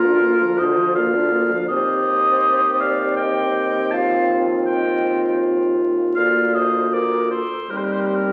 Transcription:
Already playing: D2 F4 A#4
0.06 D4
0.24 A#3
0.43 F3
0.58 D3 C5 D#5
0.78 F3
0.96 A#3 D5 F5
1.15 D4
1.32 A#3
1.52 F3
1.68 D#2 C4 G4 C5 D#5
2.81 D5 F5
3.16 D#5 G5
3.91 F4 F5 A5
4.66 D#5 G5
6.15 D2 A#3 D5 F5
6.54 C5 D#5
6.93 A#4 D5
7.30 A4 C5
7.69 D#2 G3 C4 G4 A#4
7.76 C5
7.84 A#4
7.92 C5
8.00 A#4
8.06 C5
8.15 A#4

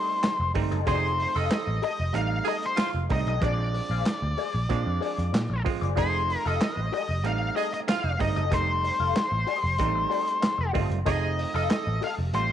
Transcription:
Already playing: G3 A3 C4 D#4 G4 C5
0.09 muted clean electric guitar stroke
0.23 muted clean electric guitar stroke, snare, clap, closed hi-hat
0.40 F1, muted clean electric guitar stroke
0.54 G1 G3 A3 C4 D#4, kick, open hi-hat
0.71 F#1 G4 A4 D#5, closed hi-hat
0.86 F1 F3 A3 C4 D4 G4 G#4 A4 C5 D#5, kick, closed hi-hat
0.95 D#4
1.04 muted clean electric guitar stroke
1.19 muted clean electric guitar stroke, open hi-hat
1.35 F1 G4 A4 D#5 F5
1.51 snare, clap, closed hi-hat
1.67 A1, muted clean electric guitar stroke
1.82 G4 A4 D#5, open hi-hat
1.99 F1, muted clean electric guitar stroke
2.13 A1 G3 A3 C4 D#4 F5, closed hi-hat
2.32 muted clean electric guitar stroke
2.45 G4 G#4 A4 D#5, open hi-hat
2.49 D#5
2.63 C5, muted clean electric guitar stroke, closed hi-hat
2.76 F4 C5, muted clean electric guitar stroke, snare, clap, closed hi-hat
2.94 F1, muted clean electric guitar stroke
3.09 C2 G3 A3 C4 D#4 D#5, kick, open hi-hat
3.26 B1 G4 A4 D#5, closed hi-hat
3.41 A#1 F3 G#3 C4 D4 G#4 C5 D5, kick, closed hi-hat
3.60 muted clean electric guitar stroke
3.74 muted clean electric guitar stroke, open hi-hat
3.90 A#1 G#4 C5 F5
4.05 snare, clap, closed hi-hat
4.22 D2, muted clean electric guitar stroke
4.37 G#4 C5 D5, open hi-hat
4.54 A#1, muted clean electric guitar stroke
4.69 A#2 F3 G#3 C4 D4, kick, closed hi-hat
4.86 F2, muted clean electric guitar stroke
5.01 G#4 C5 D5, open hi-hat
5.17 F2, muted clean electric guitar stroke, closed hi-hat
5.33 A#2, muted clean electric guitar stroke, snare, clap, closed hi-hat
5.50 A#1, muted clean electric guitar stroke
5.65 F3 G#3 C4 F4, kick, open hi-hat
5.81 F#1 G#4 C5 D5, closed hi-hat
5.96 F1 F3 A3 C4 D#4 G4 G#4 A4 C5 D#5, kick, closed hi-hat
6.14 muted clean electric guitar stroke
6.28 muted clean electric guitar stroke, open hi-hat
6.45 F1 G4 A4 D#5 F5
6.61 snare, clap, closed hi-hat
6.77 A1, muted clean electric guitar stroke
6.92 G4 A4 D#5, open hi-hat
7.09 F1, muted clean electric guitar stroke
7.23 A1 G3 A3 C4 D#4 F5, closed hi-hat
7.42 muted clean electric guitar stroke
7.56 G4 G#4 A4 D#5, open hi-hat
7.73 D#5, muted clean electric guitar stroke, closed hi-hat
7.88 F4 F5, muted clean electric guitar stroke, snare, clap, closed hi-hat
8.04 F1, muted clean electric guitar stroke
8.19 G1 G3 A3 C4 D#4 D#5, kick, open hi-hat
8.36 F#1 G4 A4 D#5, closed hi-hat
8.51 F1 G3 A3 C4 D#4 G4 A4 C5 D#5, kick, closed hi-hat
8.68 muted clean electric guitar stroke
8.84 muted clean electric guitar stroke, open hi-hat
9.00 F1 G4 A4 F5
9.16 snare, clap, closed hi-hat
9.32 A1, muted clean electric guitar stroke
9.47 G4 A4 D#5, open hi-hat
9.63 F1, muted clean electric guitar stroke
9.78 A1 G3 G#3 C4 D#4, kick, closed hi-hat
9.86 A3
9.95 muted clean electric guitar stroke
10.10 G4 A4 D#5, open hi-hat
10.26 muted clean electric guitar stroke, closed hi-hat
10.40 muted clean electric guitar stroke, snare, clap, closed hi-hat
10.58 F1, muted clean electric guitar stroke
10.73 G1 G3 A3 C4 F4 G4 A4 D#5, kick, open hi-hat
10.90 F#1, muted clean electric guitar stroke, closed hi-hat
11.05 F1 F3 A3 C4 D#4 G4 G#4 A4 D#5, kick, closed hi-hat
11.23 muted clean electric guitar stroke
11.38 muted clean electric guitar stroke, open hi-hat
11.54 F1 G4 A4 D#5 F5
11.70 snare, clap, closed hi-hat
11.87 A1, muted clean electric guitar stroke
12.01 G4 A4 D#5 F5, open hi-hat
12.18 F1, muted clean electric guitar stroke
12.33 A1 G3 A3 C4 F4 C5, closed hi-hat

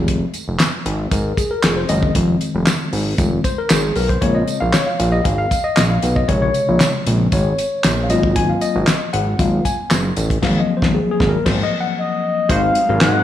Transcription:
Already playing: F1 D#3 G#3 C4 G#4
0.08 kick, closed hi-hat
0.34 closed hi-hat, tambourine
0.48 F1
0.60 snare, clap, closed hi-hat, tambourine
0.86 G#1, closed hi-hat
1.12 G#1 A#4, kick, closed hi-hat, tambourine
1.37 G#4, kick, closed hi-hat, tambourine
1.51 A#4
1.63 F1 G#4, snare, clap, closed hi-hat, tambourine
1.77 C5
1.89 F#1 D#3 G#3 C4 D#5, closed hi-hat, tambourine
2.03 kick
2.15 F1, kick, closed hi-hat, tambourine
2.41 closed hi-hat, tambourine
2.55 F1
2.67 snare, clap, closed hi-hat, tambourine
2.93 G#1, open hi-hat, tambourine
3.18 F1 D#3 G#3 C4, kick, closed hi-hat, tambourine
3.44 C5, kick, closed hi-hat, tambourine
3.58 A#4
3.70 G#1 G#4, snare, clap, closed hi-hat, tambourine
3.96 B1 A#4, open hi-hat, tambourine
4.09 C5, kick, closed hi-hat
4.21 A#1 C#3 G#3 C4 C#5, kick, closed hi-hat
4.35 D#5
4.47 closed hi-hat, tambourine
4.60 A#1 F5
4.73 C#5, snare, clap, closed hi-hat, tambourine
4.87 F5
4.99 A#1, closed hi-hat, tambourine
5.12 D#5
5.24 G#1 F5, kick, closed hi-hat, tambourine
5.38 F5
5.51 kick, closed hi-hat, tambourine
5.64 D#5
5.76 A#1 D#5, snare, clap, closed hi-hat, tambourine
5.90 F5
6.02 B1, closed hi-hat, tambourine
6.16 D#5, kick
6.28 A#1 C3 C#3 G#3 C#5, kick, closed hi-hat
6.42 C#5
6.54 closed hi-hat, tambourine
6.69 A#1
6.80 snare, clap, closed hi-hat, tambourine
7.06 A#1 C#3 G#3 C4, closed hi-hat, tambourine
7.32 G#1 C#5, kick, closed hi-hat, tambourine
7.58 closed hi-hat, tambourine
7.84 A#1, snare, clap, closed hi-hat, tambourine
8.04 F5
8.09 G#1 F#3 A#3 C4 F4 D#5, closed hi-hat, tambourine
8.23 kick
8.36 G#5, kick, closed hi-hat
8.49 F5
8.61 D#5, closed hi-hat, tambourine
8.75 G#1
8.87 snare, clap, closed hi-hat, tambourine
9.13 G#1 F#5, closed hi-hat
9.39 G#1 F#3 A#3 C4 F4 F5, kick, closed hi-hat, tambourine
9.65 G#5, kick, closed hi-hat, tambourine
9.91 F#1, snare, clap, closed hi-hat, tambourine
10.17 A1, closed hi-hat, tambourine
10.30 kick, closed hi-hat
10.42 G#1 F3 F#3 A#3 C4 F5, kick, snare, crash
10.60 D#5
10.77 C5
10.82 G#1, kick, snare
10.94 G#4
11.11 G#4
11.20 G#1, kick, snare
11.29 A#4
11.46 G#1 C5, kick, snare, crash
11.63 D#5
11.81 F#5
11.98 D#5
12.49 G#1 C3 F#3 G#3 C4 D#4 F#4 C5 F5, kick, closed hi-hat
12.75 closed hi-hat
12.88 G#1 G#3 C4 D#4 F#4 A#4
13.01 G#2 F#5, snare, clap, closed hi-hat

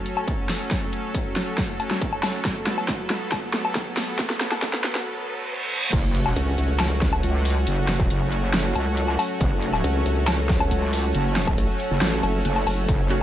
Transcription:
Already playing: F#3 A3 C#4 F#4 A4 C#5, riser
0.06 closed hi-hat
0.17 low woodblock
0.28 kick, closed hi-hat
0.49 snare, open hi-hat
0.71 kick, snare, closed hi-hat
0.93 closed hi-hat
1.15 kick, closed hi-hat
1.36 snare, closed hi-hat
1.58 kick, snare, closed hi-hat
1.80 closed hi-hat, low woodblock
1.91 snare
2.02 kick, closed hi-hat
2.13 low woodblock
2.23 snare, open hi-hat, low woodblock
2.45 B3, kick, snare, closed hi-hat
2.67 snare, closed hi-hat
2.78 low woodblock
2.89 kick, snare, closed hi-hat
3.10 snare, closed hi-hat
3.32 kick, snare, closed hi-hat, low woodblock
3.54 snare, closed hi-hat
3.65 low woodblock
3.75 kick, snare, closed hi-hat
3.97 snare, open hi-hat
4.19 kick, snare, closed hi-hat
4.30 snare
4.41 snare, closed hi-hat
4.52 snare, low woodblock
4.62 kick, snare, closed hi-hat
4.74 snare
4.84 snare, closed hi-hat
4.95 snare
5.06 reverse cymbal
5.93 F#1 F#3 A3 C#4 F#4, kick, closed hi-hat, crash, impact
6.08 C#5
6.15 A4, closed hi-hat
6.26 low woodblock
6.36 C#2, closed hi-hat
6.58 C#2, closed hi-hat
6.80 snare, closed hi-hat, low woodblock
7.02 kick, snare, closed hi-hat
7.11 A5, low woodblock
7.23 C#2, closed hi-hat
7.45 open hi-hat
7.67 F#1, closed hi-hat
7.89 snare, closed hi-hat
8.00 kick
8.10 F#1, closed hi-hat
8.32 closed hi-hat
8.54 snare, closed hi-hat
8.76 C#2, closed hi-hat, low woodblock
8.97 closed hi-hat
9.08 low woodblock
9.19 open hi-hat, low woodblock
9.41 F#1, kick, closed hi-hat
9.62 closed hi-hat
9.73 low woodblock
9.84 C#2, closed hi-hat
10.06 C#2, closed hi-hat
10.28 snare, closed hi-hat, low woodblock
10.49 kick, snare, closed hi-hat
10.60 low woodblock
10.71 C#2, closed hi-hat
10.93 open hi-hat
11.15 F#1, closed hi-hat
11.36 snare, closed hi-hat
11.47 kick, low woodblock
11.58 A1, closed hi-hat
11.80 closed hi-hat
11.91 F#1
12.02 A1, snare, closed hi-hat
12.23 F#1, closed hi-hat, low woodblock
12.45 F#1, closed hi-hat
12.56 low woodblock
12.67 F#1, open hi-hat, low woodblock
12.89 F#1 F5, kick, closed hi-hat
13.10 A3 C#4 F#4, closed hi-hat

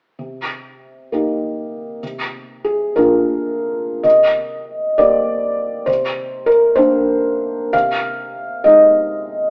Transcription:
0.19 C3
1.12 A#3 D#4 G4
2.03 C3
2.64 G#4
2.96 A#3 D4 F4 A#4
4.03 C3 D#5
4.98 A#3 C4 G4 D5
5.86 C3 C5
6.46 A#4
6.75 A#3 C4 D4 C5
7.73 C3 F5
8.64 G#3 C4 D#4 D#5

